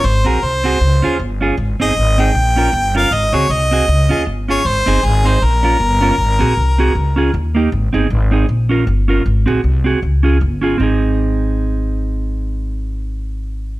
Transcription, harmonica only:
X:1
M:4/4
L:1/8
Q:"Swing" 1/4=156
K:Ab
V:1 name="Harmonica"
c B c4 z2 | z e2 g4 f | e d e4 z d | c2 A c B4- |
B6 z2 | z8 | z8 | z8 |
z8 |]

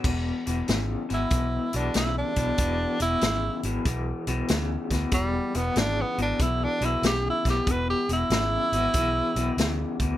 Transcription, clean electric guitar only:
X:1
M:4/4
L:1/8
Q:"Swing" 1/4=94
K:Emix
V:1 name="Clean electric guitar" clef=bass
[E,,B,,] [E,,B,,] [E,,C,] [E,,B,,] [E,,B,,] [E,,B,,] [E,,C,] [E,,B,,] | [E,,B,,] [E,,B,,] [E,,C,] [E,,B,,] [E,,B,,] [E,,B,,] [E,,C,] [E,,B,,] | [E,,B,,] [E,,B,,] [E,,C,] [E,,B,,] [E,,B,,] [E,,B,,] [E,,C,] [E,,B,,] | [E,,B,,] [E,,B,,] [E,,C,] [E,,B,,] [E,,B,,] [E,,B,,] [E,,C,] [E,,B,,] |]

